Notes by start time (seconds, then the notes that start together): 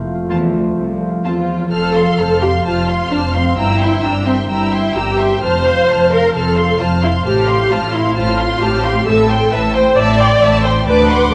Already playing: F1 F2 F3 A3 F4
0.00 C4
0.14 F4
0.29 E2 C4 F4 A4 A5
0.46 C5
0.53 D2
0.61 A4
0.77 C2 F3
0.93 C4
1.09 F4
1.24 E2 C4 F4 A4 A5
1.40 C5
1.56 A4
1.71 F1 F2 F3 A4 C5 A5 F6
1.95 F4 F5 C6
2.18 F1 F2 C5 A5 F6
2.41 G4 F5 C6
2.64 F1 F2 C4 F4 C5 A5 F6
2.88 F4 F5 C6
3.10 F1 F2 D4 C5 A5 F6
3.34 C4 F5 C6
3.56 G1 G2 E4 G5 A#5 E6
3.80 C4 E5 G5 C6
4.03 G1 G2 D4 A#4 G5 A#5 E6
4.26 C4 C5 E5 G5 C6
4.49 G1 G2 G3 E4 G5 A#5 E6
4.72 C4 E5 G5 C6
4.95 G1 G2 G4 A#4 G5 A#5 E6
5.19 C5 E5 G5 C6
5.42 F1 F2 C5 A5 F6
5.66 C4 F5 C6
5.88 F1 F2 A4 C5 A5 F6
6.11 A#4 C5 F5 C6
6.34 F1 F2 C3 A4 C5 A5 F6
6.56 C4 F5 C6
6.79 F1 F2 F4 A4 C5 A5 F6
7.02 E4 C5 F5 C6
7.25 A1 A2 G4 C5 A5 F6
7.48 C4 F5 C6
7.71 A1 A2 F4 A4 C5 A5 F6
7.94 E4 C5 F5 C6
8.16 A1 A2 F4 C5 A5 F6
8.39 C4 F5 C6
8.61 A1 A2 G4 A4 C5 A5 F6
8.84 C5 F5 C6
9.06 A1 A2 A4 E5 A5 E6
9.30 C4 G5 C6
9.51 A1 A2 A4 B4 E5 A5 E6
9.74 C5 G5 C6
9.96 A1 A2 E3 D5 E5 A5 E6
10.20 C4 G5 C6
10.42 A1 A2 A4 E5 A5 E6
10.64 C5 G5 C6
10.87 D2 D3 B4 D5 A5 D6
11.10 C4 F#5 C6 D6